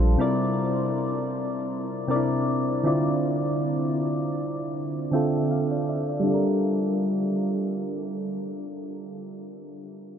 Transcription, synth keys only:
0.00 0.21 G3 medium
0.00 0.21 D4 medium
0.00 0.20 F4 medium
0.00 0.21 A4 medium
0.00 0.20 C5 loud
0.18 1.45 C3 medium
0.18 1.46 C4 medium
0.18 1.46 E4 medium
0.18 1.47 A#4 medium
0.18 1.47 D5 medium
2.08 2.84 C3 medium
2.08 2.83 C4 medium
2.08 2.16 D4 medium
2.08 2.86 A#4 medium
2.08 2.86 D5 medium
2.16 2.84 E4 medium
2.84 4.11 D3 medium
2.84 4.12 C4 medium
2.84 4.12 E4 medium
2.84 4.13 F4 medium
2.84 4.13 D5 medium
5.11 6.08 D3 medium
5.11 6.09 C4 medium
5.11 6.09 F4 medium
5.11 6.10 A4 medium
5.11 5.88 E5 medium
5.11 5.48 G5 medium
5.51 5.86 F5 medium
5.71 5.88 D5 medium
5.89 6.08 D5 medium
5.89 6.08 E5 medium
6.09 6.45 D5 medium
6.20 9.44 G3 medium
6.20 9.48 D4 medium
6.27 9.51 F4 medium
6.27 9.55 A4 medium
6.34 9.59 A#4 medium

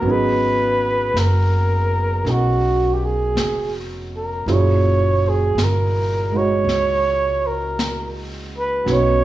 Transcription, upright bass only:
0.02 1.10 G#1 medium
1.14 2.21 F#1 medium
2.25 3.32 B1 medium
3.35 4.42 F1 medium
4.46 5.53 F#1 medium
5.55 6.62 G1 medium
6.64 8.82 C#2 medium
8.86 9.24 B1 medium

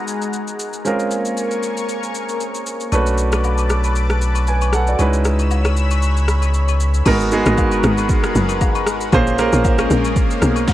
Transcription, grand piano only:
0.00 0.81 G#3 medium
0.00 0.81 B3 medium
0.00 0.82 D#4 medium
0.00 0.82 F#4 medium
0.00 0.82 A#4 medium
0.85 2.88 G#3 medium
0.85 2.88 C4 medium
0.85 2.89 C#4 medium
0.85 2.89 F4 medium
0.85 2.89 A#4 medium
2.92 4.95 A3 medium
2.92 4.95 C#4 medium
2.92 4.96 D4 medium
2.92 4.45 F#4 medium
2.92 4.45 B4 medium
4.48 4.73 B4 medium
4.48 4.72 G#5 medium
4.74 4.88 A4 medium
4.74 4.87 F#5 medium
4.89 5.13 F#4 medium
4.89 5.13 D5 medium
4.99 7.02 G#3 medium
4.99 7.02 C#4 medium
4.99 7.02 D#4 medium
4.99 7.03 E4 medium
4.99 7.03 B4 medium
7.06 7.27 G#3 medium
7.06 7.27 B3 medium
7.06 7.28 D#4 medium
7.06 7.28 F#4 medium
7.06 7.28 A#4 loud
7.32 8.15 G#3 medium
7.32 8.15 B3 medium
7.32 8.16 D#4 medium
7.32 8.16 F#4 medium
7.32 8.16 G#4 loud
9.13 9.34 A#3 medium
9.13 9.34 C#4 medium
9.13 9.34 F4 medium
9.13 9.35 G#4 medium
9.13 9.35 C5 loud
9.39 10.22 A#3 medium
9.39 10.22 C#4 medium
9.39 10.22 F4 medium
9.39 10.23 G#4 medium
9.39 10.23 A#4 loud

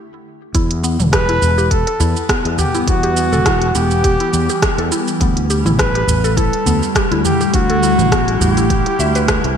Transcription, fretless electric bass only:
0.55 0.96 E2 loud
0.99 1.39 E1 loud
1.42 1.83 E1 medium
2.00 2.14 E2 medium
2.45 2.56 E2 medium
2.87 3.29 E2 medium
3.32 3.72 E1 medium
3.75 4.16 E1 medium
4.33 4.47 E2 medium
4.78 4.89 E2 medium
5.20 5.62 D2 medium
5.65 6.04 A1 medium
6.07 6.49 A1 medium
6.66 6.80 D2 medium
7.11 7.22 D2 loud
7.54 7.95 D2 medium
7.99 8.38 A1 medium
8.41 8.82 A1 medium
8.99 9.40 D2 medium
9.44 9.55 C2 medium

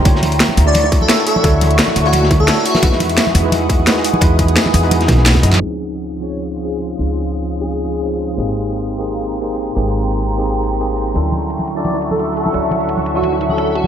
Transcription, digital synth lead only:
0.67 0.87 D5 medium
1.02 1.22 A4 medium
1.27 1.48 A4 loud
2.05 2.26 F#4 loud
2.40 2.64 A4 medium
2.65 2.86 F#4 loud
6.22 6.42 C#5 medium
6.56 6.77 G#4 medium
6.99 7.20 F4 medium
7.60 8.09 G#4 medium
11.76 11.97 D5 medium
12.11 12.32 A4 medium
12.37 12.58 A4 medium
13.15 13.36 F#4 medium
13.50 13.74 A4 medium
13.75 13.87 F#4 medium

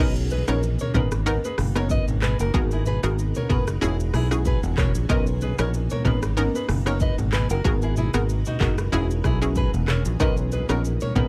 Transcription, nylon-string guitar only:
0.00 0.13 B4 medium
0.00 0.12 D#5 medium
0.31 0.45 G#4 medium
0.31 0.44 B4 medium
0.49 0.60 A#4 medium
0.49 0.59 C#5 medium
0.81 0.92 A#4 medium
0.81 0.91 C#5 medium
0.95 1.09 G#4 medium
0.95 1.08 B4 medium
1.45 1.56 G#4 medium
1.45 1.55 B4 medium
1.77 1.88 A#4 medium
1.77 1.87 C#5 medium
1.91 2.04 B4 medium
1.91 2.04 D#5 medium
2.23 2.36 G#4 medium
2.23 2.36 B4 medium
2.41 2.52 F#4 medium
2.41 2.51 A#4 medium
2.72 2.83 E4 medium
2.72 2.83 G#4 medium
2.87 3.00 G#4 medium
2.87 3.00 B4 medium
3.36 3.47 A#4 medium
3.36 3.47 C#5 medium
3.51 3.64 G#4 medium
3.51 3.64 B4 medium
3.83 3.96 E4 medium
3.83 3.96 G#4 medium
4.14 4.28 E4 medium
4.14 4.27 G#4 medium
4.46 4.60 G#4 medium
4.46 4.59 B4 medium
4.78 4.92 A#4 medium
4.78 4.91 C#5 medium
5.10 5.24 B4 medium
5.10 5.23 D#5 medium
5.42 5.56 G#4 medium
5.42 5.55 B4 medium
5.60 5.71 A#4 medium
5.60 5.70 C#5 medium
5.91 6.03 A#4 medium
5.91 6.02 C#5 medium
6.06 6.19 G#4 medium
6.06 6.19 B4 medium
6.55 6.66 G#4 medium
6.55 6.66 B4 medium
6.87 6.98 A#4 medium
6.87 6.98 C#5 medium
7.01 7.15 B4 medium
7.01 7.15 D#5 medium
7.33 7.47 G#4 medium
7.33 7.46 B4 medium
7.51 7.62 F#4 medium
7.51 7.62 A#4 medium
7.83 7.94 E4 medium
7.83 7.94 G#4 medium
7.97 8.11 E4 medium
7.97 8.10 G#4 medium
8.47 8.58 D#4 medium
8.47 8.57 F#4 medium
8.61 8.75 D#4 medium
8.61 8.74 F#4 medium
8.93 9.07 E4 medium
8.93 9.06 G#4 medium
9.25 9.39 E4 medium
9.25 9.38 G#4 medium
9.57 9.70 G#4 medium
9.57 9.70 B4 medium
9.89 10.02 A#4 medium
9.89 10.02 C#5 medium
10.21 10.34 B4 medium
10.21 10.34 D#5 medium
10.53 10.66 G#4 medium
10.53 10.66 B4 medium
10.70 10.81 A#4 medium
10.70 10.81 C#5 medium
11.02 11.13 A#4 medium
11.02 11.13 C#5 medium
11.16 11.28 G#4 medium
11.16 11.28 B4 medium

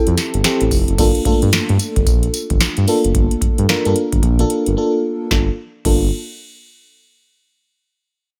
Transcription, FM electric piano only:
0.00 0.44 C4 medium
0.00 0.45 E4 medium
0.00 0.45 G4 medium
0.00 0.46 A4 loud
0.44 0.85 C4 loud
0.44 0.85 E4 medium
0.44 0.86 G4 medium
0.44 0.86 A4 loud
0.99 1.19 A#3 medium
0.99 1.20 D4 medium
0.99 1.20 F4 medium
0.99 1.20 A4 loud
1.26 1.33 A3 medium
1.26 2.03 D4 medium
1.26 2.03 F4 medium
1.26 2.04 A4 loud
1.32 2.06 A#3 medium
2.88 3.46 A#3 loud
2.88 3.46 D4 medium
2.88 3.46 F4 medium
2.88 3.46 A4 loud
3.69 3.80 A#3 medium
3.69 3.81 D4 medium
3.69 3.81 F4 medium
3.69 3.81 A#4 loud
3.85 4.21 A#3 medium
3.85 4.21 D4 medium
3.85 4.21 F4 medium
3.85 4.22 A4 medium
4.39 4.68 A#3 medium
4.39 4.68 D4 medium
4.39 4.68 F4 medium
4.39 4.68 A4 loud
4.77 5.18 A#3 medium
4.77 5.18 D4 medium
4.77 5.18 F4 medium
4.77 5.18 A4 loud
5.32 5.49 A#3 medium
5.32 5.49 D4 medium
5.32 5.49 F4 medium
5.32 5.49 A4 medium
5.85 6.10 A#3 medium
5.85 6.10 D4 medium
5.85 6.10 F4 medium
5.85 6.10 A4 medium

